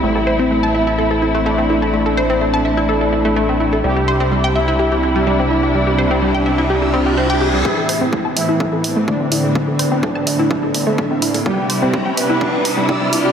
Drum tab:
HH |----------------|----------------|----------------|----------------|
BD |----------------|----------------|----------------|----------------|

HH |--o---o---o---o-|--o---o---o---oo|--o---o---o---o-|
BD |o---o---o---o---|o---o---o---o---|o---o---o---o---|